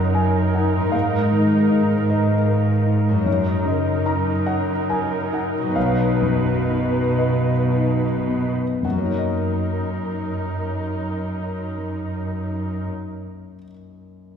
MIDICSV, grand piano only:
0, 0, Header, 1, 2, 480
1, 0, Start_track
1, 0, Key_signature, 6, "major"
1, 0, Tempo, 781250
1, 576, Time_signature, 6, 3, 24, 8
1, 2495, Tempo, 848656
1, 3455, Tempo, 937500
1, 3935, Tempo, 1025641
1, 4415, Tempo, 1092896
1, 7335, End_track
2, 0, Start_track
2, 0, Title_t, "Grand piano"
2, 0, Program_c, 0, 0
2, 0, Control_c, 0, 64, 127
2, 0, Note_on_c, 0, 42, 45
2, 0, Note_on_c, 0, 49, 29
2, 0, Note_on_c, 0, 63, 37
2, 0, Note_on_c, 0, 73, 36
2, 0, Note_on_c, 0, 75, 55
2, 0, Note_on_c, 0, 78, 63
2, 0, Note_on_c, 0, 82, 62
2, 77, Note_off_c, 0, 78, 0
2, 90, Note_on_c, 0, 80, 55
2, 92, Note_on_c, 0, 70, 35
2, 237, Note_off_c, 0, 73, 0
2, 316, Note_off_c, 0, 80, 0
2, 335, Note_off_c, 0, 63, 0
2, 335, Note_on_c, 0, 63, 34
2, 335, Note_on_c, 0, 78, 50
2, 478, Note_off_c, 0, 70, 0
2, 554, Note_off_c, 0, 42, 0
2, 559, Note_off_c, 0, 78, 0
2, 564, Note_on_c, 0, 77, 62
2, 573, Note_on_c, 0, 44, 45
2, 576, Note_off_c, 0, 63, 0
2, 586, Control_c, 0, 64, 0
2, 590, Note_off_c, 0, 49, 0
2, 590, Note_off_c, 0, 75, 0
2, 590, Note_off_c, 0, 82, 0
2, 696, Control_c, 0, 64, 127
2, 812, Note_on_c, 0, 51, 29
2, 1050, Note_on_c, 0, 63, 35
2, 1195, Note_off_c, 0, 51, 0
2, 1261, Note_off_c, 0, 77, 0
2, 1288, Note_on_c, 0, 71, 34
2, 1290, Note_on_c, 0, 75, 60
2, 1432, Note_off_c, 0, 63, 0
2, 1522, Note_on_c, 0, 70, 33
2, 1670, Note_off_c, 0, 71, 0
2, 1757, Note_on_c, 0, 63, 33
2, 1907, Note_off_c, 0, 70, 0
2, 1980, Note_off_c, 0, 44, 0
2, 1981, Note_off_c, 0, 75, 0
2, 2001, Note_on_c, 0, 42, 39
2, 2002, Note_off_c, 0, 63, 0
2, 2012, Note_on_c, 0, 73, 55
2, 2018, Control_c, 0, 64, 0
2, 2100, Control_c, 0, 64, 127
2, 2234, Note_off_c, 0, 73, 0
2, 2246, Note_on_c, 0, 49, 31
2, 2257, Note_on_c, 0, 75, 50
2, 2481, Note_off_c, 0, 75, 0
2, 2495, Note_on_c, 0, 63, 34
2, 2495, Note_on_c, 0, 82, 66
2, 2630, Note_off_c, 0, 49, 0
2, 2709, Note_off_c, 0, 82, 0
2, 2724, Note_on_c, 0, 78, 64
2, 2727, Note_on_c, 0, 73, 36
2, 2867, Note_off_c, 0, 63, 0
2, 2945, Note_off_c, 0, 78, 0
2, 2961, Note_on_c, 0, 70, 37
2, 2967, Note_on_c, 0, 80, 58
2, 3108, Note_off_c, 0, 73, 0
2, 3191, Note_off_c, 0, 80, 0
2, 3208, Note_on_c, 0, 63, 36
2, 3218, Note_on_c, 0, 78, 57
2, 3353, Note_off_c, 0, 70, 0
2, 3429, Note_off_c, 0, 42, 0
2, 3444, Note_off_c, 0, 78, 0
2, 3454, Note_on_c, 0, 77, 63
2, 3455, Note_off_c, 0, 63, 0
2, 3456, Note_on_c, 0, 35, 43
2, 3465, Control_c, 0, 64, 0
2, 3543, Control_c, 0, 64, 127
2, 3691, Note_on_c, 0, 42, 29
2, 3932, Note_on_c, 0, 63, 35
2, 4075, Note_off_c, 0, 42, 0
2, 4150, Note_off_c, 0, 77, 0
2, 4163, Note_on_c, 0, 75, 55
2, 4168, Note_on_c, 0, 71, 36
2, 4313, Note_off_c, 0, 63, 0
2, 4412, Note_on_c, 0, 63, 31
2, 4559, Note_off_c, 0, 71, 0
2, 4658, Note_on_c, 0, 59, 27
2, 4807, Note_off_c, 0, 63, 0
2, 4884, Note_off_c, 0, 75, 0
2, 4888, Note_off_c, 0, 35, 0
2, 4900, Note_on_c, 0, 42, 29
2, 4904, Note_off_c, 0, 59, 0
2, 4909, Note_on_c, 0, 78, 41
2, 4916, Control_c, 0, 64, 0
2, 4933, Note_on_c, 0, 54, 27
2, 4964, Note_on_c, 0, 58, 29
2, 4994, Note_on_c, 0, 63, 28
2, 5016, Control_c, 0, 64, 127
2, 5026, Note_on_c, 0, 73, 26
2, 5056, Note_on_c, 0, 75, 29
2, 6971, Note_off_c, 0, 42, 0
2, 6976, Note_off_c, 0, 78, 0
2, 6987, Note_off_c, 0, 54, 0
2, 7003, Note_off_c, 0, 58, 0
2, 7018, Note_off_c, 0, 63, 0
2, 7034, Note_off_c, 0, 73, 0
2, 7049, Note_off_c, 0, 75, 0
2, 7335, End_track
0, 0, End_of_file